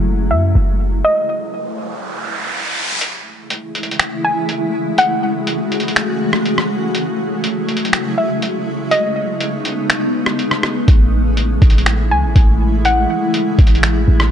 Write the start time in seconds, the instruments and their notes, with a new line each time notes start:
Already playing: 808-style bass F#1, ambient pad C#3 F#3 G#3 A3 E4
0.31 808-style bass F#2, synth pluck E5
0.55 808-style bass F#1
1.04 synth pluck D#5, riser
3.01 ambient pad C#3 E3 G#3 A3 E4, closed hi-hat
3.50 closed hi-hat
3.75 closed hi-hat
3.83 closed hi-hat
3.91 closed hi-hat
3.99 finger snap, closed hi-hat
4.25 synth pluck G#5
4.49 closed hi-hat
4.98 ambient pad F#4, synth pluck F#5, closed hi-hat
5.47 closed hi-hat
5.72 closed hi-hat
5.80 closed hi-hat
5.88 closed hi-hat
5.96 finger snap, closed hi-hat
6.33 cross-stick
6.46 closed hi-hat
6.58 cross-stick
6.94 ambient pad F#3 G#3 E4, closed hi-hat
7.44 closed hi-hat
7.69 closed hi-hat
7.77 closed hi-hat
7.85 closed hi-hat
7.93 finger snap, closed hi-hat
8.18 synth pluck E5
8.42 closed hi-hat
8.91 ambient pad G#3 B3 D#4, synth pluck D#5, closed hi-hat
9.41 closed hi-hat
9.65 closed hi-hat
9.90 finger snap, closed hi-hat
10.26 cross-stick
10.39 closed hi-hat
10.51 cross-stick
10.63 cross-stick
10.88 808-style bass A1, ambient pad E3 E4, kick, closed hi-hat
11.37 closed hi-hat
11.62 808-style bass A1, kick, closed hi-hat
11.70 closed hi-hat
11.78 closed hi-hat
11.86 finger snap, closed hi-hat
12.11 808-style bass C#2, synth pluck G#5
12.23 808-style bass A1
12.36 808-style bass A1, kick, closed hi-hat
12.85 synth pluck F#5, closed hi-hat
13.34 closed hi-hat
13.59 808-style bass A1, kick, closed hi-hat
13.67 closed hi-hat
13.75 closed hi-hat
13.83 finger snap, closed hi-hat
14.08 808-style bass A1
14.20 cross-stick